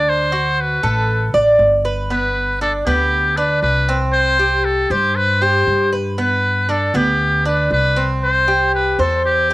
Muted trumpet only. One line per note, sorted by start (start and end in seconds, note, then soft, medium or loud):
0.00 0.11 D5 medium
0.09 0.62 C5 medium
0.61 1.36 B4 medium
2.12 2.59 B4 medium
2.61 2.73 A4 medium
2.86 3.38 G4 medium
3.37 3.62 B4 loud
3.62 3.99 B4 loud
4.13 4.66 C5 loud
4.65 4.93 A4 medium
4.91 5.17 G4 medium
5.16 5.43 B4 loud
5.42 5.93 C5 loud
6.19 6.72 B4 medium
6.70 6.98 A4 medium
6.96 7.46 G4 medium
7.47 7.70 B4 medium
7.72 8.08 B4 loud
8.23 8.70 C5 medium
8.75 9.02 B4 medium
9.00 9.25 A4 medium
9.25 9.54 G4 medium